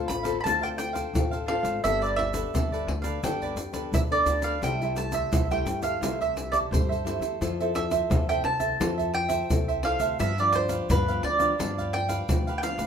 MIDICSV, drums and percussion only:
0, 0, Header, 1, 3, 480
1, 0, Start_track
1, 0, Tempo, 696864
1, 1266, Time_signature, 4, 2, 24, 8
1, 8863, End_track
2, 0, Start_track
2, 0, Title_t, "Pandeiro"
2, 66, Note_on_c, 9, 54, 65
2, 135, Note_off_c, 9, 54, 0
2, 173, Note_on_c, 9, 54, 53
2, 241, Note_off_c, 9, 54, 0
2, 320, Note_on_c, 9, 54, 73
2, 389, Note_off_c, 9, 54, 0
2, 442, Note_on_c, 9, 54, 32
2, 511, Note_off_c, 9, 54, 0
2, 542, Note_on_c, 9, 54, 57
2, 611, Note_off_c, 9, 54, 0
2, 658, Note_on_c, 9, 54, 48
2, 727, Note_off_c, 9, 54, 0
2, 794, Note_on_c, 9, 54, 72
2, 863, Note_off_c, 9, 54, 0
2, 914, Note_on_c, 9, 54, 30
2, 983, Note_off_c, 9, 54, 0
2, 1021, Note_on_c, 9, 54, 64
2, 1090, Note_off_c, 9, 54, 0
2, 1134, Note_on_c, 9, 54, 48
2, 1203, Note_off_c, 9, 54, 0
2, 1271, Note_on_c, 9, 54, 69
2, 1340, Note_off_c, 9, 54, 0
2, 1401, Note_on_c, 9, 54, 29
2, 1470, Note_off_c, 9, 54, 0
2, 1507, Note_on_c, 9, 54, 64
2, 1576, Note_off_c, 9, 54, 0
2, 1611, Note_on_c, 9, 54, 56
2, 1680, Note_off_c, 9, 54, 0
2, 1755, Note_on_c, 9, 54, 74
2, 1824, Note_off_c, 9, 54, 0
2, 1884, Note_on_c, 9, 54, 30
2, 1953, Note_off_c, 9, 54, 0
2, 1986, Note_on_c, 9, 54, 68
2, 2055, Note_off_c, 9, 54, 0
2, 2095, Note_on_c, 9, 54, 48
2, 2164, Note_off_c, 9, 54, 0
2, 2229, Note_on_c, 9, 54, 80
2, 2298, Note_off_c, 9, 54, 0
2, 2355, Note_on_c, 9, 54, 30
2, 2424, Note_off_c, 9, 54, 0
2, 2459, Note_on_c, 9, 54, 57
2, 2528, Note_off_c, 9, 54, 0
2, 2574, Note_on_c, 9, 54, 52
2, 2643, Note_off_c, 9, 54, 0
2, 2712, Note_on_c, 9, 54, 73
2, 2780, Note_off_c, 9, 54, 0
2, 2840, Note_on_c, 9, 54, 31
2, 2909, Note_off_c, 9, 54, 0
2, 2937, Note_on_c, 9, 54, 60
2, 3006, Note_off_c, 9, 54, 0
2, 3045, Note_on_c, 9, 54, 49
2, 3114, Note_off_c, 9, 54, 0
2, 3188, Note_on_c, 9, 54, 65
2, 3257, Note_off_c, 9, 54, 0
2, 3318, Note_on_c, 9, 54, 28
2, 3386, Note_off_c, 9, 54, 0
2, 3419, Note_on_c, 9, 54, 58
2, 3488, Note_off_c, 9, 54, 0
2, 3527, Note_on_c, 9, 54, 57
2, 3596, Note_off_c, 9, 54, 0
2, 3669, Note_on_c, 9, 54, 80
2, 3738, Note_off_c, 9, 54, 0
2, 3796, Note_on_c, 9, 54, 34
2, 3865, Note_off_c, 9, 54, 0
2, 3903, Note_on_c, 9, 54, 61
2, 3972, Note_off_c, 9, 54, 0
2, 4013, Note_on_c, 9, 54, 49
2, 4082, Note_off_c, 9, 54, 0
2, 4153, Note_on_c, 9, 54, 79
2, 4222, Note_off_c, 9, 54, 0
2, 4282, Note_on_c, 9, 54, 28
2, 4351, Note_off_c, 9, 54, 0
2, 4387, Note_on_c, 9, 54, 55
2, 4456, Note_off_c, 9, 54, 0
2, 4499, Note_on_c, 9, 54, 49
2, 4568, Note_off_c, 9, 54, 0
2, 4641, Note_on_c, 9, 54, 72
2, 4710, Note_off_c, 9, 54, 0
2, 4768, Note_on_c, 9, 54, 31
2, 4837, Note_off_c, 9, 54, 0
2, 4869, Note_on_c, 9, 54, 64
2, 4938, Note_off_c, 9, 54, 0
2, 4975, Note_on_c, 9, 54, 48
2, 5044, Note_off_c, 9, 54, 0
2, 5110, Note_on_c, 9, 54, 66
2, 5179, Note_off_c, 9, 54, 0
2, 5239, Note_on_c, 9, 54, 33
2, 5308, Note_off_c, 9, 54, 0
2, 5340, Note_on_c, 9, 54, 67
2, 5408, Note_off_c, 9, 54, 0
2, 5450, Note_on_c, 9, 54, 55
2, 5519, Note_off_c, 9, 54, 0
2, 5585, Note_on_c, 9, 54, 72
2, 5654, Note_off_c, 9, 54, 0
2, 5714, Note_on_c, 9, 54, 31
2, 5783, Note_off_c, 9, 54, 0
2, 5812, Note_on_c, 9, 54, 64
2, 5881, Note_off_c, 9, 54, 0
2, 5925, Note_on_c, 9, 54, 44
2, 5994, Note_off_c, 9, 54, 0
2, 6067, Note_on_c, 9, 54, 87
2, 6136, Note_off_c, 9, 54, 0
2, 6196, Note_on_c, 9, 54, 33
2, 6265, Note_off_c, 9, 54, 0
2, 6293, Note_on_c, 9, 54, 55
2, 6362, Note_off_c, 9, 54, 0
2, 6403, Note_on_c, 9, 54, 57
2, 6472, Note_off_c, 9, 54, 0
2, 6546, Note_on_c, 9, 54, 69
2, 6615, Note_off_c, 9, 54, 0
2, 6673, Note_on_c, 9, 54, 33
2, 6742, Note_off_c, 9, 54, 0
2, 6771, Note_on_c, 9, 54, 68
2, 6840, Note_off_c, 9, 54, 0
2, 6886, Note_on_c, 9, 54, 51
2, 6955, Note_off_c, 9, 54, 0
2, 7023, Note_on_c, 9, 54, 66
2, 7092, Note_off_c, 9, 54, 0
2, 7150, Note_on_c, 9, 54, 32
2, 7219, Note_off_c, 9, 54, 0
2, 7250, Note_on_c, 9, 54, 65
2, 7319, Note_off_c, 9, 54, 0
2, 7365, Note_on_c, 9, 54, 59
2, 7434, Note_off_c, 9, 54, 0
2, 7507, Note_on_c, 9, 54, 74
2, 7576, Note_off_c, 9, 54, 0
2, 7634, Note_on_c, 9, 54, 29
2, 7703, Note_off_c, 9, 54, 0
2, 7737, Note_on_c, 9, 54, 64
2, 7806, Note_off_c, 9, 54, 0
2, 7850, Note_on_c, 9, 54, 47
2, 7919, Note_off_c, 9, 54, 0
2, 7989, Note_on_c, 9, 54, 86
2, 8058, Note_off_c, 9, 54, 0
2, 8119, Note_on_c, 9, 54, 32
2, 8188, Note_off_c, 9, 54, 0
2, 8219, Note_on_c, 9, 54, 59
2, 8288, Note_off_c, 9, 54, 0
2, 8330, Note_on_c, 9, 54, 51
2, 8399, Note_off_c, 9, 54, 0
2, 8465, Note_on_c, 9, 54, 76
2, 8533, Note_off_c, 9, 54, 0
2, 8592, Note_on_c, 9, 54, 29
2, 8661, Note_off_c, 9, 54, 0
2, 8700, Note_on_c, 9, 54, 64
2, 8769, Note_off_c, 9, 54, 0
2, 8808, Note_on_c, 9, 54, 50
2, 8863, Note_off_c, 9, 54, 0
2, 8863, End_track
3, 0, Start_track
3, 0, Title_t, "Drums"
3, 66, Note_on_c, 9, 82, 68
3, 135, Note_off_c, 9, 82, 0
3, 173, Note_on_c, 9, 82, 71
3, 173, Note_on_c, 9, 87, 26
3, 241, Note_off_c, 9, 82, 0
3, 241, Note_off_c, 9, 87, 0
3, 320, Note_on_c, 9, 82, 83
3, 320, Note_on_c, 9, 87, 60
3, 389, Note_off_c, 9, 82, 0
3, 389, Note_off_c, 9, 87, 0
3, 442, Note_on_c, 9, 82, 31
3, 442, Note_on_c, 9, 87, 31
3, 511, Note_off_c, 9, 82, 0
3, 511, Note_off_c, 9, 87, 0
3, 542, Note_on_c, 9, 82, 65
3, 611, Note_off_c, 9, 82, 0
3, 658, Note_on_c, 9, 82, 70
3, 658, Note_on_c, 9, 87, 30
3, 727, Note_off_c, 9, 82, 0
3, 727, Note_off_c, 9, 87, 0
3, 794, Note_on_c, 9, 82, 77
3, 794, Note_on_c, 9, 87, 92
3, 863, Note_off_c, 9, 82, 0
3, 863, Note_off_c, 9, 87, 0
3, 914, Note_on_c, 9, 82, 30
3, 983, Note_off_c, 9, 82, 0
3, 1134, Note_on_c, 9, 82, 67
3, 1203, Note_off_c, 9, 82, 0
3, 1271, Note_on_c, 9, 82, 65
3, 1271, Note_on_c, 9, 87, 51
3, 1340, Note_off_c, 9, 82, 0
3, 1340, Note_off_c, 9, 87, 0
3, 1401, Note_on_c, 9, 82, 34
3, 1470, Note_off_c, 9, 82, 0
3, 1507, Note_on_c, 9, 87, 28
3, 1576, Note_off_c, 9, 87, 0
3, 1611, Note_on_c, 9, 82, 79
3, 1611, Note_on_c, 9, 87, 30
3, 1680, Note_off_c, 9, 82, 0
3, 1680, Note_off_c, 9, 87, 0
3, 1755, Note_on_c, 9, 82, 72
3, 1755, Note_on_c, 9, 87, 89
3, 1824, Note_off_c, 9, 82, 0
3, 1824, Note_off_c, 9, 87, 0
3, 1884, Note_on_c, 9, 82, 32
3, 1953, Note_off_c, 9, 82, 0
3, 2095, Note_on_c, 9, 82, 64
3, 2095, Note_on_c, 9, 87, 29
3, 2164, Note_off_c, 9, 82, 0
3, 2164, Note_off_c, 9, 87, 0
3, 2229, Note_on_c, 9, 82, 81
3, 2229, Note_on_c, 9, 87, 60
3, 2298, Note_off_c, 9, 82, 0
3, 2298, Note_off_c, 9, 87, 0
3, 2355, Note_on_c, 9, 82, 29
3, 2355, Note_on_c, 9, 87, 31
3, 2424, Note_off_c, 9, 82, 0
3, 2424, Note_off_c, 9, 87, 0
3, 2459, Note_on_c, 9, 82, 66
3, 2528, Note_off_c, 9, 82, 0
3, 2574, Note_on_c, 9, 82, 65
3, 2574, Note_on_c, 9, 87, 31
3, 2643, Note_off_c, 9, 82, 0
3, 2643, Note_off_c, 9, 87, 0
3, 2712, Note_on_c, 9, 82, 74
3, 2712, Note_on_c, 9, 87, 93
3, 2780, Note_off_c, 9, 82, 0
3, 2780, Note_off_c, 9, 87, 0
3, 2840, Note_on_c, 9, 82, 29
3, 2909, Note_off_c, 9, 82, 0
3, 2937, Note_on_c, 9, 82, 68
3, 3006, Note_off_c, 9, 82, 0
3, 3045, Note_on_c, 9, 82, 75
3, 3114, Note_off_c, 9, 82, 0
3, 3188, Note_on_c, 9, 82, 63
3, 3188, Note_on_c, 9, 87, 52
3, 3257, Note_off_c, 9, 82, 0
3, 3257, Note_off_c, 9, 87, 0
3, 3318, Note_on_c, 9, 82, 32
3, 3386, Note_off_c, 9, 82, 0
3, 3419, Note_on_c, 9, 82, 64
3, 3488, Note_off_c, 9, 82, 0
3, 3527, Note_on_c, 9, 82, 75
3, 3527, Note_on_c, 9, 87, 33
3, 3596, Note_off_c, 9, 82, 0
3, 3596, Note_off_c, 9, 87, 0
3, 3669, Note_on_c, 9, 82, 80
3, 3669, Note_on_c, 9, 87, 97
3, 3738, Note_off_c, 9, 82, 0
3, 3738, Note_off_c, 9, 87, 0
3, 3796, Note_on_c, 9, 82, 33
3, 3865, Note_off_c, 9, 82, 0
3, 3903, Note_on_c, 9, 82, 69
3, 3972, Note_off_c, 9, 82, 0
3, 4013, Note_on_c, 9, 82, 61
3, 4013, Note_on_c, 9, 87, 27
3, 4082, Note_off_c, 9, 82, 0
3, 4082, Note_off_c, 9, 87, 0
3, 4153, Note_on_c, 9, 82, 81
3, 4153, Note_on_c, 9, 87, 59
3, 4222, Note_off_c, 9, 82, 0
3, 4222, Note_off_c, 9, 87, 0
3, 4282, Note_on_c, 9, 82, 29
3, 4282, Note_on_c, 9, 87, 28
3, 4351, Note_off_c, 9, 82, 0
3, 4351, Note_off_c, 9, 87, 0
3, 4387, Note_on_c, 9, 82, 66
3, 4456, Note_off_c, 9, 82, 0
3, 4499, Note_on_c, 9, 82, 65
3, 4499, Note_on_c, 9, 87, 28
3, 4568, Note_off_c, 9, 82, 0
3, 4568, Note_off_c, 9, 87, 0
3, 4641, Note_on_c, 9, 82, 83
3, 4641, Note_on_c, 9, 87, 96
3, 4710, Note_off_c, 9, 82, 0
3, 4710, Note_off_c, 9, 87, 0
3, 4768, Note_on_c, 9, 82, 32
3, 4837, Note_off_c, 9, 82, 0
3, 4869, Note_on_c, 9, 82, 66
3, 4938, Note_off_c, 9, 82, 0
3, 4975, Note_on_c, 9, 82, 66
3, 5044, Note_off_c, 9, 82, 0
3, 5110, Note_on_c, 9, 82, 62
3, 5110, Note_on_c, 9, 87, 49
3, 5179, Note_off_c, 9, 82, 0
3, 5179, Note_off_c, 9, 87, 0
3, 5239, Note_on_c, 9, 82, 31
3, 5308, Note_off_c, 9, 82, 0
3, 5340, Note_on_c, 9, 82, 64
3, 5340, Note_on_c, 9, 87, 29
3, 5408, Note_off_c, 9, 82, 0
3, 5408, Note_off_c, 9, 87, 0
3, 5450, Note_on_c, 9, 82, 68
3, 5450, Note_on_c, 9, 87, 31
3, 5519, Note_off_c, 9, 82, 0
3, 5519, Note_off_c, 9, 87, 0
3, 5585, Note_on_c, 9, 82, 71
3, 5585, Note_on_c, 9, 87, 102
3, 5654, Note_off_c, 9, 82, 0
3, 5654, Note_off_c, 9, 87, 0
3, 5714, Note_on_c, 9, 82, 34
3, 5783, Note_off_c, 9, 82, 0
3, 5925, Note_on_c, 9, 82, 73
3, 5925, Note_on_c, 9, 87, 27
3, 5994, Note_off_c, 9, 82, 0
3, 5994, Note_off_c, 9, 87, 0
3, 6067, Note_on_c, 9, 82, 85
3, 6067, Note_on_c, 9, 87, 63
3, 6136, Note_off_c, 9, 82, 0
3, 6136, Note_off_c, 9, 87, 0
3, 6196, Note_on_c, 9, 82, 29
3, 6196, Note_on_c, 9, 87, 32
3, 6265, Note_off_c, 9, 82, 0
3, 6265, Note_off_c, 9, 87, 0
3, 6403, Note_on_c, 9, 82, 74
3, 6403, Note_on_c, 9, 87, 29
3, 6472, Note_off_c, 9, 82, 0
3, 6472, Note_off_c, 9, 87, 0
3, 6546, Note_on_c, 9, 82, 71
3, 6546, Note_on_c, 9, 87, 92
3, 6615, Note_off_c, 9, 82, 0
3, 6615, Note_off_c, 9, 87, 0
3, 6673, Note_on_c, 9, 82, 29
3, 6742, Note_off_c, 9, 82, 0
3, 6886, Note_on_c, 9, 82, 60
3, 6955, Note_off_c, 9, 82, 0
3, 7023, Note_on_c, 9, 82, 69
3, 7023, Note_on_c, 9, 87, 45
3, 7092, Note_off_c, 9, 82, 0
3, 7092, Note_off_c, 9, 87, 0
3, 7150, Note_on_c, 9, 82, 30
3, 7219, Note_off_c, 9, 82, 0
3, 7250, Note_on_c, 9, 82, 63
3, 7250, Note_on_c, 9, 87, 27
3, 7319, Note_off_c, 9, 82, 0
3, 7319, Note_off_c, 9, 87, 0
3, 7365, Note_on_c, 9, 82, 76
3, 7365, Note_on_c, 9, 87, 35
3, 7434, Note_off_c, 9, 82, 0
3, 7434, Note_off_c, 9, 87, 0
3, 7507, Note_on_c, 9, 82, 78
3, 7507, Note_on_c, 9, 87, 97
3, 7576, Note_off_c, 9, 82, 0
3, 7576, Note_off_c, 9, 87, 0
3, 7634, Note_on_c, 9, 82, 33
3, 7703, Note_off_c, 9, 82, 0
3, 7850, Note_on_c, 9, 82, 70
3, 7850, Note_on_c, 9, 87, 29
3, 7919, Note_off_c, 9, 82, 0
3, 7919, Note_off_c, 9, 87, 0
3, 7989, Note_on_c, 9, 82, 82
3, 7989, Note_on_c, 9, 87, 62
3, 8058, Note_off_c, 9, 82, 0
3, 8058, Note_off_c, 9, 87, 0
3, 8119, Note_on_c, 9, 82, 33
3, 8119, Note_on_c, 9, 87, 30
3, 8188, Note_off_c, 9, 82, 0
3, 8188, Note_off_c, 9, 87, 0
3, 8330, Note_on_c, 9, 82, 70
3, 8330, Note_on_c, 9, 87, 30
3, 8399, Note_off_c, 9, 82, 0
3, 8399, Note_off_c, 9, 87, 0
3, 8465, Note_on_c, 9, 82, 81
3, 8465, Note_on_c, 9, 87, 94
3, 8533, Note_off_c, 9, 82, 0
3, 8533, Note_off_c, 9, 87, 0
3, 8592, Note_on_c, 9, 82, 29
3, 8661, Note_off_c, 9, 82, 0
3, 8700, Note_on_c, 9, 82, 67
3, 8769, Note_off_c, 9, 82, 0
3, 8808, Note_on_c, 9, 82, 60
3, 8863, Note_off_c, 9, 82, 0
3, 8863, End_track
0, 0, End_of_file